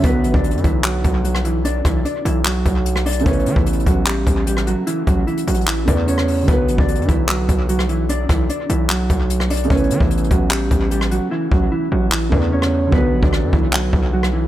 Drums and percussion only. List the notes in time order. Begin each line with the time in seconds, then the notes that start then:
0.04 kick, closed hi-hat
0.24 closed hi-hat
0.34 kick
0.44 closed hi-hat
0.51 closed hi-hat
0.57 closed hi-hat
0.64 kick, closed hi-hat
0.84 clap, closed hi-hat
1.04 kick, closed hi-hat
1.25 closed hi-hat
1.35 cross-stick
1.45 closed hi-hat
1.65 closed hi-hat
1.85 kick, cross-stick, closed hi-hat
2.05 closed hi-hat
2.25 closed hi-hat
2.45 clap, closed hi-hat
2.66 kick, closed hi-hat
2.86 closed hi-hat
2.96 cross-stick
3.06 closed hi-hat, open hi-hat
3.13 closed hi-hat
3.19 closed hi-hat
3.26 kick, closed hi-hat
3.33 closed hi-hat
3.39 closed hi-hat
3.46 closed hi-hat
3.56 kick
3.66 closed hi-hat
3.73 closed hi-hat
3.80 closed hi-hat
3.86 kick, closed hi-hat
4.06 clap, closed hi-hat
4.27 kick, closed hi-hat
4.47 closed hi-hat
4.57 cross-stick
4.67 closed hi-hat
4.87 closed hi-hat
5.07 kick, closed hi-hat
5.27 closed hi-hat
5.37 closed hi-hat
5.47 closed hi-hat
5.54 closed hi-hat
5.61 closed hi-hat
5.67 clap, closed hi-hat
5.88 kick, closed hi-hat
6.08 closed hi-hat
6.18 cross-stick
6.28 open hi-hat
6.48 kick, closed hi-hat
6.68 closed hi-hat
6.78 kick
6.88 closed hi-hat
6.95 closed hi-hat
7.02 closed hi-hat
7.09 kick, closed hi-hat
7.29 clap, closed hi-hat
7.49 kick, closed hi-hat
7.69 closed hi-hat
7.79 cross-stick
7.89 closed hi-hat
8.09 closed hi-hat
8.29 kick, cross-stick, closed hi-hat
8.50 closed hi-hat
8.70 closed hi-hat
8.90 clap, closed hi-hat
9.10 kick, closed hi-hat
9.30 closed hi-hat
9.40 cross-stick
9.50 closed hi-hat, open hi-hat
9.57 closed hi-hat
9.63 closed hi-hat
9.70 kick, closed hi-hat
9.77 closed hi-hat
9.84 closed hi-hat
9.90 closed hi-hat
10.00 kick
10.11 closed hi-hat
10.17 closed hi-hat
10.24 closed hi-hat
10.31 kick, closed hi-hat
10.51 clap, closed hi-hat
10.71 kick, closed hi-hat
10.91 closed hi-hat
11.01 cross-stick
11.11 closed hi-hat
11.52 kick
12.12 clap
12.32 kick
12.62 cross-stick
12.92 kick
13.23 kick
13.33 cross-stick
13.53 kick
13.73 clap
13.93 kick
14.23 cross-stick